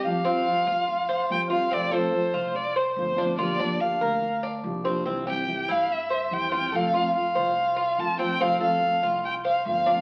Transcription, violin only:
\new Staff \with { instrumentName = "Violin" } { \time 4/4 \key f \mixolydian \tempo 4 = 144 f''2. g''8 f''8 | d''8 c''4. d''8 c''8 c''4 | d''4 f''4. r4. | r8 g''4 f''8 e''4 g''4 |
f''4 f''2 a''8 g''8 | f''8 f''4. g''8 f''8 f''4 | }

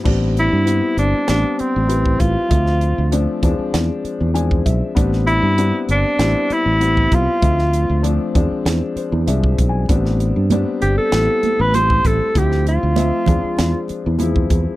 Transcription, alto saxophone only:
\new Staff \with { instrumentName = "Alto saxophone" } { \time 4/4 \key a \minor \tempo 4 = 98 r8 e'4 d'8 d'8 c'4 f'8~ | f'4 r2. | r8 e'4 d'4 e'4 f'8~ | f'4 r2. |
r4. g'16 a'4 b'16 c''8 a'8 | g'8 f'2 r4. | }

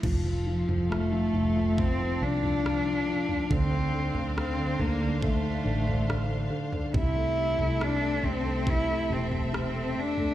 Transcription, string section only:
\new Staff \with { instrumentName = "String section" } { \time 4/4 \key f \major \tempo 4 = 70 << { f''1~ | f''1 | e''1 | } \\ { <c' a'>1 | <d' c''>1 | <c' a'>1 | } >> }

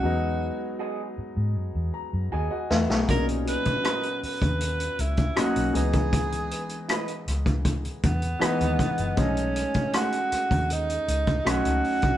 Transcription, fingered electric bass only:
\new Staff \with { instrumentName = "Fingered electric bass" } { \clef bass \time 4/4 \key b \major \tempo 4 = 79 e,8. r4 gis,16 fis,16 e,16 r16 fis,16 dis,16 r16 e,16 b,,16 | b,,8. r4 dis,8. cis,8 r16 b,,16 cis,8~ | cis,8. r8. cis,4 e,8 r16 dis,16 r16 fis,,16 | b,,8. r4 dis,8. cis,8 b,,16 cis,16 r16 b,,16 | }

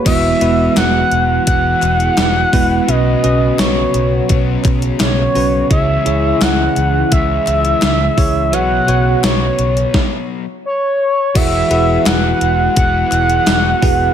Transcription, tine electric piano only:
<<
  \new Staff \with { instrumentName = "Tine electric piano" } { \time 4/4 \key e \lydian \tempo 4 = 85 <gis b e' fis' b'>8 <gis b e' fis' b'>4.~ <gis b e' fis' b'>16 r4 r16 <gis b e' fis' b'>8 | <cis' fis' b'>8 <cis' fis' b'>4.~ <cis' fis' b'>16 r4 r16 <cis' fis' b'>8 | <e' gis' cis''>8 <e' gis' cis''>4.~ <e' gis' cis''>16 r4 r16 <e' gis' cis''>8 | <fis' b' cis''>8 <fis' b' cis''>4. r2 |
<e' fis' gis' b' fis''>8 <e' fis' gis' b' fis''>4.~ <e' fis' gis' b' fis''>16 r4 r16 <e' fis' gis' b' fis''>8 | }
  \new Staff \with { instrumentName = "Tine electric piano" } { \clef bass \time 4/4 \key e \lydian e4. r2 r8 | b,4. r2 r8 | cis4. r2 r8 | b,4. r2 r8 |
e4. r2 r8 | }
>>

